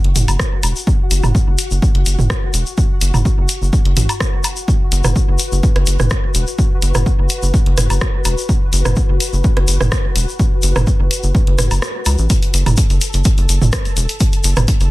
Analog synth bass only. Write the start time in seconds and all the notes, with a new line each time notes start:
0.04 F#1
0.16 F#1
0.28 F#1
0.63 E1
1.11 F#1
1.23 F#1
1.47 F#1
1.71 F#1
1.95 F#1
2.06 F#1
2.19 F#1
2.54 E1
3.01 F#1
3.14 F#1
3.38 F#1
3.62 F#1
3.85 F#1
3.97 A1
4.92 F#1
5.04 F#1
5.28 F#1
5.52 F#1
5.76 F#1
5.87 F#1
6.00 F#1
6.35 E1
6.82 F#1
6.95 F#1
7.19 F#1
7.43 F#1
7.66 F#1
7.78 F#1
7.90 F#1
8.25 E1
8.73 F#1
8.85 F#1
9.09 F#1
9.33 F#1
9.57 F#1
9.68 F#1
9.81 F#1
10.16 E1
10.63 F#1
10.76 F#1
11.00 F#1
11.23 F#1
11.47 F#1
11.58 F#1
11.71 F#1
12.06 C#2
12.19 A1
12.54 F#1
12.66 F#1
12.90 F#1
13.14 F#1
13.38 F#1
13.49 F#1
13.62 F#1
13.97 E1
14.44 F#1
14.57 F#1
14.81 F#1